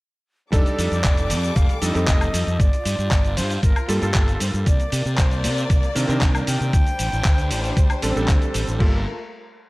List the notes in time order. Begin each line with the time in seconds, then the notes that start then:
0.52 F1 G3 D4 D#4 A4 D5 D6, kick, closed hi-hat, shaker
0.66 closed hi-hat, shaker
0.79 F2, open hi-hat, shaker
0.92 F2, closed hi-hat, shaker
1.04 F1, kick, clap, closed hi-hat, shaker
1.17 closed hi-hat, shaker
1.30 F2, open hi-hat, shaker
1.43 closed hi-hat, shaker
1.56 F1 F5, kick, closed hi-hat, shaker
1.69 closed hi-hat, shaker
1.81 F2 G3 D4 D#4 A4 D#5, open hi-hat, shaker
1.94 F2 G3 C4 D#4 A4, clap, closed hi-hat, shaker
2.08 F1, kick, clap, closed hi-hat, shaker
2.21 closed hi-hat, high woodblock, shaker
2.34 F2, open hi-hat, shaker
2.47 F2, closed hi-hat, shaker
2.59 G1 F4 D5, kick, closed hi-hat, shaker
2.73 closed hi-hat, shaker
2.85 G2, open hi-hat, shaker
2.99 G2, closed hi-hat, shaker
3.11 G1, kick, clap, closed hi-hat, shaker
3.25 closed hi-hat, shaker
3.37 G2 C5, open hi-hat, shaker
3.50 open hi-hat, shaker
3.63 G1 A#4, kick, closed hi-hat, shaker
3.76 closed hi-hat, high woodblock, shaker
3.88 G2 G3 A#3 F4 A4, open hi-hat, shaker
4.01 G2 G3 A#3 F4 A4, closed hi-hat, shaker
4.14 G1, kick, clap, closed hi-hat, shaker
4.28 closed hi-hat, shaker
4.40 G2 C5, open hi-hat, shaker
4.54 G2, closed hi-hat, shaker
4.66 C2 A#3 D5, kick, closed hi-hat, shaker
4.80 closed hi-hat, shaker
4.92 C3, open hi-hat, shaker
5.06 C3, closed hi-hat, shaker
5.18 C2 C5, kick, clap, closed hi-hat, shaker
5.31 closed hi-hat, shaker
5.44 C3, open hi-hat, shaker
5.57 closed hi-hat, shaker
5.70 C2 D5, kick, closed hi-hat, shaker
5.83 closed hi-hat, shaker
5.95 C3 D#3 C4 D4 A#4, open hi-hat, shaker
6.08 C3 D#3 C4 D4 A#4, clap, closed hi-hat, shaker
6.21 C2, kick, clap, closed hi-hat, shaker
6.35 closed hi-hat, high woodblock, shaker
6.47 C3 G5, open hi-hat, shaker
6.61 C3, closed hi-hat, shaker
6.73 D2 G3 D4 C5, kick, closed hi-hat, shaker
6.86 closed hi-hat, shaker
6.99 A1, open hi-hat, shaker
7.12 A1, closed hi-hat, shaker
7.25 D2, kick, clap, closed hi-hat, shaker
7.38 closed hi-hat, shaker
7.51 A1, open hi-hat, shaker
7.64 open hi-hat, shaker
7.77 D2, kick, closed hi-hat, shaker
7.90 closed hi-hat, high woodblock, shaker
8.02 A1 G3 C4 D4 A4, open hi-hat, shaker
8.15 A1 G3 C4 D4 A4, closed hi-hat, shaker
8.28 D2, kick, clap, closed hi-hat, shaker
8.42 closed hi-hat, shaker
8.54 A1, open hi-hat, shaker
8.67 A1, closed hi-hat, shaker
8.79 G1 G3 A3 A#3 F4 A4 A#4, kick, crash